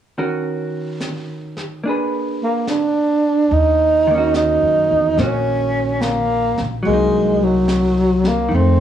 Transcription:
0, 0, Header, 1, 5, 480
1, 0, Start_track
1, 0, Key_signature, -6, "minor"
1, 0, Tempo, 833333
1, 101, Time_signature, 4, 2, 24, 8
1, 5069, End_track
2, 0, Start_track
2, 0, Title_t, "Hollow-body jazz guitar"
2, 0, Program_c, 0, 26
2, 103, Note_on_c, 0, 51, 31
2, 105, Note_on_c, 0, 61, 37
2, 108, Note_on_c, 0, 66, 38
2, 110, Note_on_c, 0, 70, 34
2, 1057, Note_on_c, 0, 58, 29
2, 1063, Note_off_c, 0, 51, 0
2, 1065, Note_off_c, 0, 61, 0
2, 1066, Note_off_c, 0, 66, 0
2, 1067, Note_off_c, 0, 70, 0
2, 1068, Note_on_c, 0, 62, 34
2, 1078, Note_on_c, 0, 68, 33
2, 1090, Note_on_c, 0, 71, 35
2, 2020, Note_off_c, 0, 58, 0
2, 2026, Note_off_c, 0, 62, 0
2, 2031, Note_off_c, 0, 68, 0
2, 2037, Note_off_c, 0, 71, 0
2, 2345, Note_on_c, 0, 51, 44
2, 2366, Note_on_c, 0, 58, 43
2, 2389, Note_on_c, 0, 61, 45
2, 2407, Note_on_c, 0, 66, 49
2, 2981, Note_off_c, 0, 58, 0
2, 2987, Note_on_c, 0, 58, 28
2, 2990, Note_off_c, 0, 61, 0
2, 2997, Note_on_c, 0, 61, 34
2, 2999, Note_off_c, 0, 66, 0
2, 3006, Note_on_c, 0, 66, 36
2, 3930, Note_off_c, 0, 58, 0
2, 3932, Note_on_c, 0, 54, 38
2, 3939, Note_off_c, 0, 51, 0
2, 3950, Note_off_c, 0, 61, 0
2, 3954, Note_off_c, 0, 66, 0
2, 3970, Note_on_c, 0, 58, 40
2, 3994, Note_on_c, 0, 63, 44
2, 4886, Note_off_c, 0, 54, 0
2, 4888, Note_on_c, 0, 51, 36
2, 4915, Note_off_c, 0, 58, 0
2, 4923, Note_on_c, 0, 57, 36
2, 4927, Note_off_c, 0, 63, 0
2, 5069, Note_off_c, 0, 51, 0
2, 5069, Note_off_c, 0, 57, 0
2, 5069, End_track
3, 0, Start_track
3, 0, Title_t, "Tenor saxophone"
3, 0, Program_c, 1, 66
3, 1401, Note_on_c, 1, 58, 50
3, 1536, Note_off_c, 1, 58, 0
3, 1550, Note_on_c, 1, 62, 61
3, 2033, Note_on_c, 1, 63, 70
3, 2042, Note_off_c, 1, 62, 0
3, 2507, Note_off_c, 1, 63, 0
3, 2511, Note_on_c, 1, 63, 63
3, 2964, Note_off_c, 1, 63, 0
3, 2994, Note_on_c, 1, 61, 70
3, 3463, Note_on_c, 1, 58, 69
3, 3472, Note_off_c, 1, 61, 0
3, 3846, Note_off_c, 1, 58, 0
3, 3950, Note_on_c, 1, 56, 69
3, 4284, Note_on_c, 1, 54, 68
3, 4293, Note_off_c, 1, 56, 0
3, 4768, Note_on_c, 1, 58, 60
3, 4777, Note_off_c, 1, 54, 0
3, 4922, Note_on_c, 1, 60, 67
3, 4931, Note_off_c, 1, 58, 0
3, 5069, Note_off_c, 1, 60, 0
3, 5069, End_track
4, 0, Start_track
4, 0, Title_t, "Upright bass"
4, 0, Program_c, 2, 32
4, 2022, Note_on_c, 2, 39, 68
4, 2640, Note_off_c, 2, 39, 0
4, 2663, Note_on_c, 2, 42, 43
4, 2812, Note_off_c, 2, 42, 0
4, 2828, Note_on_c, 2, 40, 52
4, 2975, Note_off_c, 2, 40, 0
4, 2979, Note_on_c, 2, 34, 64
4, 3769, Note_off_c, 2, 34, 0
4, 3800, Note_on_c, 2, 34, 55
4, 3936, Note_off_c, 2, 34, 0
4, 3953, Note_on_c, 2, 36, 62
4, 4883, Note_off_c, 2, 36, 0
4, 4905, Note_on_c, 2, 41, 69
4, 5069, Note_off_c, 2, 41, 0
4, 5069, End_track
5, 0, Start_track
5, 0, Title_t, "Drums"
5, 96, Note_on_c, 9, 25, 22
5, 579, Note_on_c, 9, 38, 30
5, 579, Note_on_c, 9, 44, 42
5, 637, Note_off_c, 9, 38, 0
5, 637, Note_off_c, 9, 44, 0
5, 902, Note_on_c, 9, 38, 18
5, 960, Note_off_c, 9, 38, 0
5, 1063, Note_off_c, 9, 25, 0
5, 1063, Note_on_c, 9, 25, 26
5, 1540, Note_on_c, 9, 38, 31
5, 1540, Note_on_c, 9, 44, 47
5, 1598, Note_off_c, 9, 38, 0
5, 1598, Note_off_c, 9, 44, 0
5, 2019, Note_off_c, 9, 25, 0
5, 2019, Note_on_c, 9, 25, 29
5, 2500, Note_on_c, 9, 38, 34
5, 2500, Note_on_c, 9, 44, 44
5, 2558, Note_off_c, 9, 38, 0
5, 2558, Note_off_c, 9, 44, 0
5, 2982, Note_off_c, 9, 25, 0
5, 2982, Note_on_c, 9, 25, 32
5, 2982, Note_on_c, 9, 38, 23
5, 3039, Note_off_c, 9, 38, 0
5, 3465, Note_on_c, 9, 38, 37
5, 3465, Note_on_c, 9, 44, 39
5, 3522, Note_off_c, 9, 38, 0
5, 3522, Note_off_c, 9, 44, 0
5, 3787, Note_on_c, 9, 38, 22
5, 3845, Note_off_c, 9, 38, 0
5, 3945, Note_off_c, 9, 25, 0
5, 3945, Note_on_c, 9, 25, 32
5, 4424, Note_on_c, 9, 38, 35
5, 4424, Note_on_c, 9, 44, 43
5, 4482, Note_off_c, 9, 38, 0
5, 4482, Note_off_c, 9, 44, 0
5, 4746, Note_on_c, 9, 38, 21
5, 4803, Note_off_c, 9, 38, 0
5, 4902, Note_off_c, 9, 25, 0
5, 4902, Note_on_c, 9, 25, 27
5, 5069, Note_off_c, 9, 25, 0
5, 5069, End_track
0, 0, End_of_file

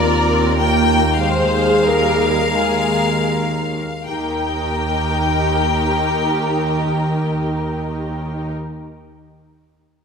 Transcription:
0, 0, Header, 1, 6, 480
1, 0, Start_track
1, 0, Key_signature, -3, "major"
1, 0, Tempo, 1165049
1, 493, Tempo, 1360544
1, 973, Tempo, 1522843
1, 1453, Time_signature, 4, 2, 24, 8
1, 1453, Tempo, 1411765
1, 3482, End_track
2, 0, Start_track
2, 0, Title_t, "Violin section"
2, 0, Program_c, 0, 48
2, 0, Note_on_c, 0, 74, 127
2, 232, Note_off_c, 0, 74, 0
2, 248, Note_on_c, 0, 79, 127
2, 488, Note_on_c, 0, 77, 120
2, 494, Note_off_c, 0, 79, 0
2, 1446, Note_on_c, 0, 79, 105
2, 1451, Note_off_c, 0, 77, 0
2, 2955, Note_off_c, 0, 79, 0
2, 3482, End_track
3, 0, Start_track
3, 0, Title_t, "Violin section"
3, 0, Program_c, 1, 48
3, 0, Note_on_c, 1, 70, 102
3, 494, Note_off_c, 1, 70, 0
3, 497, Note_on_c, 1, 72, 103
3, 721, Note_off_c, 1, 72, 0
3, 722, Note_on_c, 1, 70, 97
3, 972, Note_on_c, 1, 68, 80
3, 973, Note_off_c, 1, 70, 0
3, 1215, Note_off_c, 1, 68, 0
3, 1452, Note_on_c, 1, 67, 76
3, 1452, Note_on_c, 1, 70, 80
3, 2961, Note_off_c, 1, 67, 0
3, 2961, Note_off_c, 1, 70, 0
3, 3482, End_track
4, 0, Start_track
4, 0, Title_t, "Viola section"
4, 0, Program_c, 2, 48
4, 0, Note_on_c, 2, 65, 82
4, 4, Note_on_c, 2, 60, 93
4, 236, Note_on_c, 2, 58, 96
4, 243, Note_off_c, 2, 60, 0
4, 486, Note_on_c, 2, 56, 94
4, 486, Note_on_c, 2, 68, 97
4, 488, Note_off_c, 2, 58, 0
4, 493, Note_off_c, 2, 65, 0
4, 713, Note_on_c, 2, 55, 104
4, 715, Note_off_c, 2, 56, 0
4, 966, Note_on_c, 2, 56, 88
4, 967, Note_on_c, 2, 70, 83
4, 968, Note_off_c, 2, 55, 0
4, 971, Note_off_c, 2, 68, 0
4, 1356, Note_off_c, 2, 70, 0
4, 1363, Note_off_c, 2, 56, 0
4, 1449, Note_on_c, 2, 63, 79
4, 1450, Note_on_c, 2, 51, 77
4, 2959, Note_off_c, 2, 63, 0
4, 2960, Note_off_c, 2, 51, 0
4, 3482, End_track
5, 0, Start_track
5, 0, Title_t, "Cello section"
5, 0, Program_c, 3, 48
5, 0, Note_on_c, 3, 39, 88
5, 1355, Note_off_c, 3, 39, 0
5, 1454, Note_on_c, 3, 39, 76
5, 2963, Note_off_c, 3, 39, 0
5, 3482, End_track
6, 0, Start_track
6, 0, Title_t, "Double bass section"
6, 0, Program_c, 4, 48
6, 0, Note_on_c, 4, 39, 89
6, 1355, Note_off_c, 4, 39, 0
6, 1452, Note_on_c, 4, 39, 84
6, 2961, Note_off_c, 4, 39, 0
6, 3482, End_track
0, 0, End_of_file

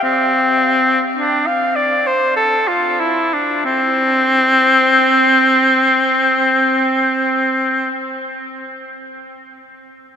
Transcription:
0, 0, Header, 1, 2, 480
1, 0, Start_track
1, 0, Key_signature, 0, "major"
1, 0, Tempo, 1160542
1, 16, Time_signature, 3, 2, 24, 8
1, 976, Tempo, 1276596
1, 3910, End_track
2, 0, Start_track
2, 0, Title_t, "Oboe"
2, 0, Program_c, 0, 68
2, 13, Note_on_c, 0, 60, 58
2, 414, Note_off_c, 0, 60, 0
2, 484, Note_on_c, 0, 62, 54
2, 607, Note_on_c, 0, 77, 51
2, 613, Note_off_c, 0, 62, 0
2, 727, Note_on_c, 0, 74, 55
2, 733, Note_off_c, 0, 77, 0
2, 854, Note_on_c, 0, 72, 55
2, 860, Note_off_c, 0, 74, 0
2, 973, Note_off_c, 0, 72, 0
2, 976, Note_on_c, 0, 69, 57
2, 1095, Note_on_c, 0, 65, 47
2, 1100, Note_off_c, 0, 69, 0
2, 1216, Note_on_c, 0, 64, 47
2, 1221, Note_off_c, 0, 65, 0
2, 1342, Note_on_c, 0, 62, 48
2, 1347, Note_off_c, 0, 64, 0
2, 1459, Note_off_c, 0, 62, 0
2, 1462, Note_on_c, 0, 60, 77
2, 3059, Note_off_c, 0, 60, 0
2, 3910, End_track
0, 0, End_of_file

